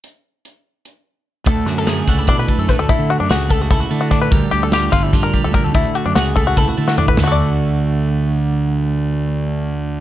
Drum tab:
HH |x---x---x-----|x-x-x-x-x-x-x-|x-x-x-x-x-x-x-|x-x-x-x-x-x-x-|
SD |--------------|--o-o-------o-|----o-------o-|----o---o-----|
T1 |--------------|--------------|--------------|--------------|
FT |--------------|--------------|--------------|--------------|
BD |--------------|o-----o-o-o-o-|o-----o-o---o-|o-----o-o-o-o-|

HH |x-x-x-x-------|--------------|--------------|
SD |----o------o--|o-------------|--------------|
T1 |--------oo----|--------------|--------------|
FT |------------o-|o-------------|--------------|
BD |o-----o-o----o|--------------|--------------|